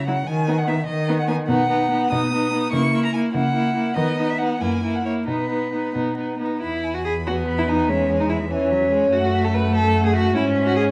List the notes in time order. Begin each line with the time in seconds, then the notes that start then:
Already playing: C#3
0.07 F#3 E4 F#5
0.27 D#3 G#5
0.48 B3 D#4
0.58 F#5
0.67 B3 D#4 E5
0.87 D#3 D#5
1.08 B3 D#4
1.19 F#5
1.28 B3 D#4 G#5
1.48 B2 B3 D#4 F#5
1.69 B3 D#4
1.91 B3 D#4
2.12 B2 B3 D#4 D#6
2.32 B3 D#4
2.52 B3 D#4
2.73 C#3 A#3 E4 C#6
2.93 A#3 E4
3.05 A#5
3.14 A#3 E4 G#5
3.34 C#3 A#3 E4 F#5
3.54 A#3 E4
3.75 A#3 E4
3.96 D#3 B3 D#4 D#5
4.18 B3 D#4
4.30 E5
4.38 B3 D#4 F#5
4.61 F#2 A#3 E4 G#5
4.83 A#3 E4
4.95 F#5
5.04 A#3 E4 C#5
5.27 B2 B3 D#4 B4
5.49 B3 D#4
5.72 B3 D#4
5.95 B2 B3 D#4
6.17 B3 D#4
6.39 B3 D#4
6.61 E2 E4 B5
6.84 G#5
6.94 F#4
7.04 G#4 B5
7.27 B3 F#4 G#5
7.48 B5
7.58 E4
7.69 D#4 G#5
7.89 G#3 C#4 E5
8.10 G#5
8.20 D#4
8.29 E4 E5
8.50 E3 C#4 G#5
8.71 F#3 E5
8.91 G#3 G#5
9.12 F#2 A3 F#4 F#5
9.35 E5
9.45 A4
9.54 B4 F#5
9.74 A4 E5
9.95 F#5
10.06 G#4
10.15 F#4 E5
10.35 G#2 C#4 E4 G#5
10.56 E5
10.66 F#4
10.76 G#4 G#5